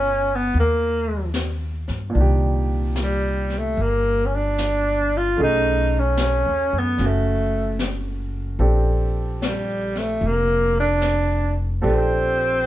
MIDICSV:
0, 0, Header, 1, 5, 480
1, 0, Start_track
1, 0, Key_signature, -2, "major"
1, 0, Tempo, 815217
1, 1272, Time_signature, 4, 2, 24, 8
1, 1752, Tempo, 805369
1, 7526, End_track
2, 0, Start_track
2, 0, Title_t, "Grand piano"
2, 0, Program_c, 0, 0
2, 0, Control_c, 0, 64, 127
2, 0, Note_on_c, 0, 47, 39
2, 0, Note_on_c, 0, 63, 41
2, 0, Note_on_c, 0, 65, 46
2, 0, Note_on_c, 0, 70, 46
2, 1234, Note_on_c, 0, 46, 51
2, 1257, Note_on_c, 0, 62, 42
2, 1266, Note_off_c, 0, 70, 0
2, 1271, Note_off_c, 0, 47, 0
2, 1275, Note_off_c, 0, 63, 0
2, 1277, Note_on_c, 0, 51, 42
2, 1280, Control_c, 0, 64, 0
2, 1281, Note_off_c, 0, 65, 0
2, 1298, Note_on_c, 0, 67, 53
2, 1378, Control_c, 0, 64, 127
2, 3170, Note_off_c, 0, 46, 0
2, 3177, Note_on_c, 0, 57, 52
2, 3182, Note_off_c, 0, 62, 0
2, 3183, Note_on_c, 0, 61, 45
2, 3192, Note_off_c, 0, 51, 0
2, 3196, Note_on_c, 0, 63, 45
2, 3197, Control_c, 0, 64, 0
2, 3200, Note_on_c, 0, 68, 54
2, 3203, Note_off_c, 0, 67, 0
2, 3302, Control_c, 0, 64, 127
2, 4129, Note_off_c, 0, 61, 0
2, 4138, Note_on_c, 0, 61, 40
2, 4154, Note_on_c, 0, 66, 44
2, 5096, Note_off_c, 0, 57, 0
2, 5098, Note_off_c, 0, 61, 0
2, 5099, Note_on_c, 0, 69, 46
2, 5103, Note_on_c, 0, 60, 42
2, 5104, Note_on_c, 0, 62, 43
2, 5105, Note_off_c, 0, 63, 0
2, 5106, Note_off_c, 0, 66, 0
2, 5107, Note_on_c, 0, 67, 52
2, 5108, Note_off_c, 0, 68, 0
2, 5111, Control_c, 0, 64, 0
2, 5199, Control_c, 0, 64, 127
2, 7012, Note_off_c, 0, 69, 0
2, 7014, Note_off_c, 0, 60, 0
2, 7017, Note_off_c, 0, 62, 0
2, 7020, Note_off_c, 0, 67, 0
2, 7020, Note_on_c, 0, 69, 50
2, 7023, Note_on_c, 0, 60, 50
2, 7026, Note_on_c, 0, 62, 47
2, 7029, Note_on_c, 0, 67, 58
2, 7526, Note_off_c, 0, 60, 0
2, 7526, Note_off_c, 0, 62, 0
2, 7526, Note_off_c, 0, 67, 0
2, 7526, Note_off_c, 0, 69, 0
2, 7526, End_track
3, 0, Start_track
3, 0, Title_t, "Tenor saxophone"
3, 0, Program_c, 1, 66
3, 0, Note_on_c, 1, 61, 90
3, 207, Note_on_c, 1, 59, 76
3, 216, Note_off_c, 1, 61, 0
3, 336, Note_off_c, 1, 59, 0
3, 348, Note_on_c, 1, 58, 72
3, 786, Note_off_c, 1, 58, 0
3, 1781, Note_on_c, 1, 55, 71
3, 2113, Note_on_c, 1, 57, 72
3, 2122, Note_off_c, 1, 55, 0
3, 2252, Note_on_c, 1, 58, 80
3, 2261, Note_off_c, 1, 57, 0
3, 2516, Note_on_c, 1, 61, 65
3, 2525, Note_off_c, 1, 58, 0
3, 2573, Note_on_c, 1, 62, 91
3, 2582, Note_off_c, 1, 61, 0
3, 3060, Note_on_c, 1, 65, 84
3, 3069, Note_off_c, 1, 62, 0
3, 3202, Note_off_c, 1, 65, 0
3, 3215, Note_on_c, 1, 63, 92
3, 3549, Note_on_c, 1, 61, 86
3, 3558, Note_off_c, 1, 63, 0
3, 4020, Note_on_c, 1, 59, 77
3, 4029, Note_off_c, 1, 61, 0
3, 4188, Note_on_c, 1, 57, 72
3, 4197, Note_off_c, 1, 59, 0
3, 4645, Note_off_c, 1, 57, 0
3, 5590, Note_on_c, 1, 54, 53
3, 5613, Note_on_c, 1, 55, 68
3, 5622, Note_off_c, 1, 54, 0
3, 5931, Note_on_c, 1, 57, 78
3, 5940, Note_off_c, 1, 55, 0
3, 6097, Note_on_c, 1, 58, 89
3, 6106, Note_off_c, 1, 57, 0
3, 6406, Note_off_c, 1, 58, 0
3, 6414, Note_on_c, 1, 62, 90
3, 6860, Note_off_c, 1, 62, 0
3, 7048, Note_on_c, 1, 60, 100
3, 7526, Note_off_c, 1, 60, 0
3, 7526, End_track
4, 0, Start_track
4, 0, Title_t, "Upright bass"
4, 0, Program_c, 2, 32
4, 0, Note_on_c, 2, 31, 73
4, 285, Note_off_c, 2, 31, 0
4, 319, Note_on_c, 2, 39, 80
4, 1098, Note_off_c, 2, 39, 0
4, 1115, Note_on_c, 2, 43, 54
4, 1260, Note_off_c, 2, 43, 0
4, 1266, Note_on_c, 2, 36, 73
4, 2205, Note_off_c, 2, 36, 0
4, 2227, Note_on_c, 2, 31, 77
4, 3163, Note_off_c, 2, 31, 0
4, 3189, Note_on_c, 2, 35, 74
4, 3804, Note_off_c, 2, 35, 0
4, 3830, Note_on_c, 2, 39, 51
4, 3978, Note_off_c, 2, 39, 0
4, 3990, Note_on_c, 2, 42, 53
4, 4137, Note_off_c, 2, 42, 0
4, 4145, Note_on_c, 2, 30, 82
4, 5077, Note_off_c, 2, 30, 0
4, 5098, Note_on_c, 2, 34, 74
4, 6038, Note_off_c, 2, 34, 0
4, 6065, Note_on_c, 2, 29, 78
4, 7004, Note_off_c, 2, 29, 0
4, 7035, Note_on_c, 2, 34, 83
4, 7526, Note_off_c, 2, 34, 0
4, 7526, End_track
5, 0, Start_track
5, 0, Title_t, "Drums"
5, 308, Note_on_c, 9, 25, 28
5, 788, Note_on_c, 9, 38, 42
5, 788, Note_on_c, 9, 44, 49
5, 847, Note_off_c, 9, 38, 0
5, 847, Note_off_c, 9, 44, 0
5, 1106, Note_on_c, 9, 38, 26
5, 1165, Note_off_c, 9, 38, 0
5, 1267, Note_off_c, 9, 25, 0
5, 1267, Note_on_c, 9, 25, 38
5, 1741, Note_on_c, 9, 38, 42
5, 1741, Note_on_c, 9, 44, 55
5, 1800, Note_off_c, 9, 38, 0
5, 1800, Note_off_c, 9, 44, 0
5, 2064, Note_on_c, 9, 38, 23
5, 2124, Note_off_c, 9, 38, 0
5, 2225, Note_off_c, 9, 25, 0
5, 2225, Note_on_c, 9, 25, 29
5, 2710, Note_on_c, 9, 38, 40
5, 2710, Note_on_c, 9, 44, 55
5, 2770, Note_off_c, 9, 38, 0
5, 2770, Note_off_c, 9, 44, 0
5, 3187, Note_off_c, 9, 25, 0
5, 3187, Note_on_c, 9, 25, 35
5, 3659, Note_on_c, 9, 38, 43
5, 3659, Note_on_c, 9, 44, 55
5, 3719, Note_off_c, 9, 38, 0
5, 3719, Note_off_c, 9, 44, 0
5, 4140, Note_off_c, 9, 25, 0
5, 4140, Note_on_c, 9, 25, 33
5, 4140, Note_on_c, 9, 38, 25
5, 4200, Note_off_c, 9, 38, 0
5, 4623, Note_on_c, 9, 38, 42
5, 4623, Note_on_c, 9, 44, 51
5, 4682, Note_off_c, 9, 38, 0
5, 4682, Note_off_c, 9, 44, 0
5, 5106, Note_off_c, 9, 25, 0
5, 5106, Note_on_c, 9, 25, 34
5, 5595, Note_on_c, 9, 38, 44
5, 5595, Note_on_c, 9, 44, 49
5, 5654, Note_off_c, 9, 38, 0
5, 5654, Note_off_c, 9, 44, 0
5, 5912, Note_on_c, 9, 38, 25
5, 5972, Note_off_c, 9, 38, 0
5, 6068, Note_off_c, 9, 25, 0
5, 6068, Note_on_c, 9, 25, 31
5, 6544, Note_on_c, 9, 38, 40
5, 6544, Note_on_c, 9, 44, 48
5, 6603, Note_off_c, 9, 38, 0
5, 6603, Note_off_c, 9, 44, 0
5, 7033, Note_off_c, 9, 25, 0
5, 7033, Note_on_c, 9, 25, 37
5, 7526, Note_off_c, 9, 25, 0
5, 7526, End_track
0, 0, End_of_file